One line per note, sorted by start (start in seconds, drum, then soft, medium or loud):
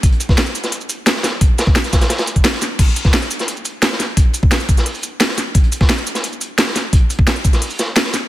0.03 kick loud
0.03 closed hi-hat medium
0.12 closed hi-hat soft
0.20 closed hi-hat medium
0.20 shaker medium
0.29 kick loud
0.29 snare medium
0.38 snare loud
0.38 closed hi-hat loud
0.38 closed hi-hat medium
0.46 closed hi-hat soft
0.55 closed hi-hat medium
0.55 shaker medium
0.64 snare soft
0.64 closed hi-hat soft
0.64 shaker soft
0.72 closed hi-hat medium
0.81 shaker soft
0.89 closed hi-hat medium
0.89 shaker medium
1.06 snare loud
1.06 closed hi-hat medium
1.16 snare soft
1.23 snare loud
1.23 snare soft
1.23 closed hi-hat medium
1.23 shaker medium
1.41 kick loud
1.41 closed hi-hat medium
1.58 snare loud
1.58 closed hi-hat medium
1.58 shaker medium
1.67 kick loud
1.76 snare loud
1.76 closed hi-hat medium
1.84 snare soft
1.84 closed hi-hat soft
1.93 kick loud
1.93 snare loud
1.93 closed hi-hat medium
1.93 shaker medium
2.01 snare loud
2.01 closed hi-hat medium
2.01 closed hi-hat soft
2.01 shaker soft
2.10 snare loud
2.10 closed hi-hat loud
2.10 closed hi-hat medium
2.18 snare loud
2.18 closed hi-hat medium
2.18 shaker soft
2.27 closed hi-hat medium
2.27 shaker medium
2.36 kick medium
2.36 closed hi-hat soft
2.44 snare loud
2.44 closed hi-hat medium
2.53 snare medium
2.62 snare soft
2.62 closed hi-hat medium
2.62 shaker medium
2.79 kick loud
2.79 closed hi-hat loud
2.79 closed hi-hat medium
2.79 crash medium
2.88 closed hi-hat soft
2.96 closed hi-hat medium
2.96 shaker medium
3.05 kick loud
3.05 snare soft
3.14 snare loud
3.14 closed hi-hat loud
3.14 closed hi-hat medium
3.22 closed hi-hat soft
3.31 closed hi-hat medium
3.31 shaker medium
3.39 snare medium
3.39 closed hi-hat soft
3.39 shaker soft
3.48 closed hi-hat loud
3.48 closed hi-hat medium
3.57 shaker soft
3.65 closed hi-hat medium
3.65 shaker medium
3.82 snare loud
3.82 closed hi-hat medium
3.82 closed hi-hat loud
3.92 snare medium
4.00 snare soft
4.00 closed hi-hat medium
4.00 shaker medium
4.17 kick loud
4.17 closed hi-hat loud
4.17 closed hi-hat medium
4.33 closed hi-hat medium
4.33 shaker medium
4.43 kick loud
4.52 snare loud
4.52 closed hi-hat loud
4.60 closed hi-hat soft
4.69 kick loud
4.69 closed hi-hat medium
4.69 shaker medium
4.77 snare medium
4.77 closed hi-hat soft
4.77 shaker soft
4.86 closed hi-hat loud
4.86 open hi-hat medium
4.95 shaker soft
5.03 closed hi-hat medium
5.03 shaker medium
5.20 snare loud
5.20 closed hi-hat loud
5.20 closed hi-hat medium
5.29 snare medium
5.37 snare soft
5.37 closed hi-hat medium
5.37 shaker medium
5.54 kick loud
5.54 closed hi-hat loud
5.64 closed hi-hat soft
5.72 closed hi-hat medium
5.72 shaker medium
5.81 kick loud
5.81 snare soft
5.89 snare loud
5.89 closed hi-hat medium
5.89 closed hi-hat loud
5.98 closed hi-hat soft
6.07 closed hi-hat medium
6.07 shaker medium
6.15 snare medium
6.15 closed hi-hat soft
6.15 shaker soft
6.24 closed hi-hat loud
6.24 closed hi-hat medium
6.33 shaker soft
6.41 closed hi-hat medium
6.41 shaker medium
6.58 snare loud
6.58 closed hi-hat loud
6.58 closed hi-hat medium
6.67 snare medium
6.75 snare soft
6.75 closed hi-hat medium
6.75 shaker medium
6.93 kick loud
6.93 closed hi-hat medium
6.93 closed hi-hat loud
7.10 closed hi-hat medium
7.10 shaker medium
7.19 kick loud
7.27 snare loud
7.27 closed hi-hat medium
7.27 closed hi-hat loud
7.36 closed hi-hat soft
7.44 kick loud
7.44 closed hi-hat medium
7.44 shaker medium
7.53 snare medium
7.53 closed hi-hat soft
7.53 shaker soft
7.62 closed hi-hat medium
7.62 open hi-hat medium
7.70 shaker soft
7.79 snare loud
7.79 closed hi-hat medium
7.79 shaker medium
7.96 snare loud
7.96 closed hi-hat loud
7.96 closed hi-hat medium
8.04 snare medium
8.14 snare soft
8.14 closed hi-hat medium
8.14 shaker medium